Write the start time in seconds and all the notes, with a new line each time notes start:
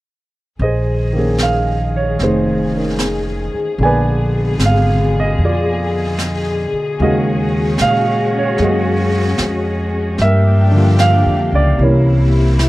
0.58 A#1 D#3 G#4 D#5, brush sweep
0.63 G#4 C5
1.13 D#3 A#3 C#4
1.19 G#4
1.38 F5, snare, hi-hat pedal
1.96 C#5
2.19 F1, brush sweep, snare
2.23 D#4 G#4 C5
2.75 C#4 D#4 A#4
2.99 snare, hi-hat pedal
3.54 muted upright bass stroke
3.78 A#1 B2 D3 A#3 B3 G#4, brush sweep
3.83 B4 D5 G#5
4.58 G#1, snare, hi-hat pedal
4.65 F5
5.20 D#5
5.38 F2, brush sweep
5.45 F4 G#4 D5
6.19 snare, hi-hat pedal
6.72 muted upright bass stroke
6.98 D#2 C#3 D#3 G#3 C#4 F#4 D#5 F5, brush sweep
7.03 F#4 G#4
7.78 A#2 F5, snare, hi-hat pedal
8.39 C#5
8.58 F#2 G#3 A#3, brush sweep, snare
8.62 F#4 G#4 D#5
9.38 F2, snare, hi-hat pedal
10.17 G2 F3 A#3 D4 G4, brush sweep, snare
10.22 A#4 E5
10.71 D3 G3 A#3
10.77 F4
10.99 F5, snare, hi-hat pedal
11.26 F2
11.52 C#2 D5
11.77 C2 C3 E3 C#5, brush sweep
11.82 C3 A#3 C#4 E4 A#4
12.59 E4, snare, hi-hat pedal